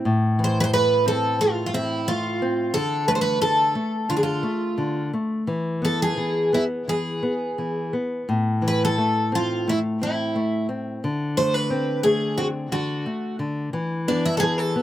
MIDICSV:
0, 0, Header, 1, 3, 480
1, 0, Start_track
1, 0, Key_signature, 0, "minor"
1, 0, Tempo, 672646
1, 36, Time_signature, 4, 2, 24, 8
1, 2916, Tempo, 697674
1, 6756, Tempo, 677201
1, 10411, End_track
2, 0, Start_track
2, 0, Title_t, "Twelve-string acoustic guitar"
2, 0, Program_c, 0, 25
2, 314, Note_on_c, 0, 72, 72
2, 420, Note_off_c, 0, 72, 0
2, 431, Note_on_c, 0, 71, 79
2, 452, Note_off_c, 0, 71, 0
2, 455, Note_on_c, 0, 72, 73
2, 499, Note_off_c, 0, 72, 0
2, 525, Note_on_c, 0, 71, 85
2, 755, Note_off_c, 0, 71, 0
2, 769, Note_on_c, 0, 69, 80
2, 988, Note_off_c, 0, 69, 0
2, 1005, Note_on_c, 0, 65, 76
2, 1179, Note_off_c, 0, 65, 0
2, 1187, Note_on_c, 0, 65, 52
2, 1238, Note_off_c, 0, 65, 0
2, 1244, Note_on_c, 0, 64, 67
2, 1484, Note_on_c, 0, 65, 81
2, 1490, Note_off_c, 0, 64, 0
2, 1954, Note_on_c, 0, 69, 80
2, 1970, Note_off_c, 0, 65, 0
2, 2195, Note_off_c, 0, 69, 0
2, 2198, Note_on_c, 0, 71, 76
2, 2218, Note_off_c, 0, 71, 0
2, 2249, Note_on_c, 0, 72, 61
2, 2290, Note_off_c, 0, 72, 0
2, 2293, Note_on_c, 0, 71, 76
2, 2423, Note_off_c, 0, 71, 0
2, 2437, Note_on_c, 0, 69, 77
2, 2921, Note_off_c, 0, 69, 0
2, 2923, Note_on_c, 0, 65, 63
2, 2964, Note_off_c, 0, 65, 0
2, 2971, Note_on_c, 0, 68, 54
2, 3012, Note_off_c, 0, 68, 0
2, 3015, Note_on_c, 0, 65, 59
2, 3600, Note_off_c, 0, 65, 0
2, 4127, Note_on_c, 0, 69, 71
2, 4240, Note_off_c, 0, 69, 0
2, 4249, Note_on_c, 0, 68, 75
2, 4604, Note_off_c, 0, 68, 0
2, 4607, Note_on_c, 0, 64, 60
2, 4669, Note_off_c, 0, 64, 0
2, 4846, Note_on_c, 0, 68, 68
2, 5543, Note_off_c, 0, 68, 0
2, 6074, Note_on_c, 0, 71, 70
2, 6181, Note_off_c, 0, 71, 0
2, 6191, Note_on_c, 0, 69, 69
2, 6512, Note_off_c, 0, 69, 0
2, 6539, Note_on_c, 0, 65, 65
2, 6774, Note_on_c, 0, 64, 66
2, 6775, Note_off_c, 0, 65, 0
2, 6838, Note_off_c, 0, 64, 0
2, 7012, Note_on_c, 0, 64, 54
2, 7460, Note_off_c, 0, 64, 0
2, 7964, Note_on_c, 0, 72, 82
2, 8084, Note_off_c, 0, 72, 0
2, 8084, Note_on_c, 0, 71, 82
2, 8431, Note_off_c, 0, 71, 0
2, 8433, Note_on_c, 0, 68, 72
2, 8676, Note_on_c, 0, 66, 72
2, 8681, Note_off_c, 0, 68, 0
2, 8740, Note_off_c, 0, 66, 0
2, 8921, Note_on_c, 0, 66, 64
2, 9369, Note_off_c, 0, 66, 0
2, 9885, Note_on_c, 0, 62, 70
2, 10004, Note_off_c, 0, 62, 0
2, 10008, Note_on_c, 0, 64, 75
2, 10086, Note_off_c, 0, 64, 0
2, 10090, Note_on_c, 0, 69, 67
2, 10109, Note_on_c, 0, 68, 90
2, 10118, Note_off_c, 0, 69, 0
2, 10224, Note_off_c, 0, 68, 0
2, 10237, Note_on_c, 0, 69, 80
2, 10411, Note_off_c, 0, 69, 0
2, 10411, End_track
3, 0, Start_track
3, 0, Title_t, "Nylon-string guitar"
3, 0, Program_c, 1, 24
3, 37, Note_on_c, 1, 45, 56
3, 278, Note_on_c, 1, 52, 43
3, 510, Note_off_c, 1, 52, 0
3, 526, Note_on_c, 1, 57, 45
3, 754, Note_off_c, 1, 57, 0
3, 755, Note_on_c, 1, 60, 47
3, 990, Note_off_c, 1, 60, 0
3, 993, Note_on_c, 1, 57, 46
3, 1230, Note_off_c, 1, 57, 0
3, 1238, Note_on_c, 1, 60, 46
3, 1472, Note_off_c, 1, 60, 0
3, 1483, Note_on_c, 1, 57, 47
3, 1713, Note_off_c, 1, 57, 0
3, 1727, Note_on_c, 1, 60, 44
3, 1926, Note_off_c, 1, 45, 0
3, 1951, Note_off_c, 1, 60, 0
3, 1963, Note_on_c, 1, 50, 64
3, 2196, Note_on_c, 1, 57, 49
3, 2425, Note_off_c, 1, 57, 0
3, 2430, Note_off_c, 1, 50, 0
3, 2438, Note_on_c, 1, 50, 45
3, 2669, Note_off_c, 1, 50, 0
3, 2677, Note_on_c, 1, 57, 50
3, 2912, Note_off_c, 1, 57, 0
3, 2919, Note_on_c, 1, 50, 48
3, 3148, Note_off_c, 1, 50, 0
3, 3151, Note_on_c, 1, 57, 46
3, 3381, Note_off_c, 1, 57, 0
3, 3391, Note_on_c, 1, 50, 41
3, 3620, Note_off_c, 1, 50, 0
3, 3637, Note_on_c, 1, 57, 47
3, 3864, Note_off_c, 1, 57, 0
3, 3870, Note_on_c, 1, 52, 56
3, 4108, Note_on_c, 1, 59, 42
3, 4340, Note_off_c, 1, 59, 0
3, 4342, Note_off_c, 1, 52, 0
3, 4350, Note_on_c, 1, 52, 40
3, 4582, Note_off_c, 1, 52, 0
3, 4596, Note_on_c, 1, 59, 45
3, 4826, Note_off_c, 1, 59, 0
3, 4836, Note_on_c, 1, 52, 41
3, 5069, Note_off_c, 1, 52, 0
3, 5077, Note_on_c, 1, 59, 42
3, 5312, Note_off_c, 1, 59, 0
3, 5321, Note_on_c, 1, 52, 40
3, 5556, Note_off_c, 1, 52, 0
3, 5561, Note_on_c, 1, 59, 40
3, 5795, Note_off_c, 1, 59, 0
3, 5806, Note_on_c, 1, 45, 52
3, 6035, Note_on_c, 1, 52, 39
3, 6271, Note_off_c, 1, 52, 0
3, 6282, Note_on_c, 1, 57, 42
3, 6514, Note_off_c, 1, 57, 0
3, 6517, Note_on_c, 1, 60, 46
3, 6749, Note_off_c, 1, 60, 0
3, 6762, Note_on_c, 1, 57, 46
3, 6996, Note_off_c, 1, 57, 0
3, 7002, Note_on_c, 1, 60, 46
3, 7236, Note_off_c, 1, 60, 0
3, 7243, Note_on_c, 1, 57, 41
3, 7476, Note_off_c, 1, 57, 0
3, 7479, Note_on_c, 1, 60, 43
3, 7696, Note_off_c, 1, 45, 0
3, 7713, Note_off_c, 1, 60, 0
3, 7728, Note_on_c, 1, 50, 59
3, 7965, Note_on_c, 1, 57, 46
3, 8196, Note_off_c, 1, 57, 0
3, 8199, Note_on_c, 1, 60, 49
3, 8432, Note_off_c, 1, 60, 0
3, 8437, Note_on_c, 1, 57, 50
3, 8669, Note_off_c, 1, 57, 0
3, 8676, Note_on_c, 1, 60, 49
3, 8906, Note_off_c, 1, 60, 0
3, 8909, Note_off_c, 1, 50, 0
3, 8917, Note_on_c, 1, 50, 48
3, 9148, Note_off_c, 1, 50, 0
3, 9160, Note_on_c, 1, 57, 49
3, 9390, Note_off_c, 1, 57, 0
3, 9395, Note_on_c, 1, 50, 49
3, 9628, Note_off_c, 1, 50, 0
3, 9636, Note_on_c, 1, 52, 62
3, 9882, Note_on_c, 1, 59, 50
3, 10112, Note_off_c, 1, 59, 0
3, 10120, Note_off_c, 1, 52, 0
3, 10128, Note_on_c, 1, 52, 47
3, 10357, Note_off_c, 1, 52, 0
3, 10363, Note_on_c, 1, 59, 50
3, 10411, Note_off_c, 1, 59, 0
3, 10411, End_track
0, 0, End_of_file